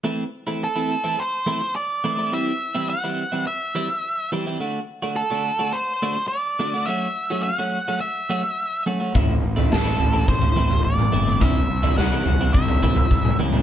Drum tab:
SD |----------------|----------------|----------------|----------------|
T2 |----------------|----------------|----------------|----------------|
FT |----------------|----------------|----------------|----------------|
BD |----------------|----------------|----------------|----------------|

SD |----o-----------|----o-----------|
T2 |-------------o--|----------o--ooo|
FT |o--o--o--o-o----|o--o--o--o-o----|
BD |o-------o-------|o-------o-o-o---|